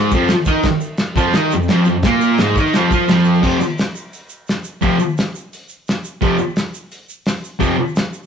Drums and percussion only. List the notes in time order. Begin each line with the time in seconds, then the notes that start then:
0.11 kick, shaker
0.22 shaker
0.28 snare, crash, shaker
0.45 kick, shaker
0.63 kick, snare, crash, shaker
0.81 shaker
0.97 snare, crash, shaker
1.16 kick, shaker
1.33 snare, crash, shaker
1.51 shaker
1.62 shaker
1.68 snare, crash, shaker
1.85 shaker
2.02 kick, snare, crash, shaker
2.21 shaker
2.38 snare, crash, shaker
2.56 kick, shaker
2.67 shaker
2.73 snare, crash, shaker
2.91 kick, shaker
3.00 shaker
3.09 snare, crash, shaker
3.24 shaker
3.35 shaker
3.43 kick, crash, shaker
3.61 shaker
3.78 snare, open hi-hat, shaker
3.95 shaker
4.13 open hi-hat, shaker
4.29 shaker
4.47 snare, open hi-hat, shaker
4.64 shaker
4.81 kick, open hi-hat, shaker
4.99 shaker
5.09 shaker
5.17 snare, open hi-hat, shaker
5.35 shaker
5.53 open hi-hat, shaker
5.69 shaker
5.87 snare, open hi-hat, shaker
6.04 shaker
6.22 kick, open hi-hat, shaker
6.38 shaker
6.48 shaker
6.56 snare, open hi-hat, shaker
6.74 shaker
6.91 open hi-hat, shaker
7.09 shaker
7.26 snare, open hi-hat, shaker
7.44 shaker
7.61 kick, open hi-hat, shaker
7.88 shaker
7.96 snare, open hi-hat, shaker
8.13 shaker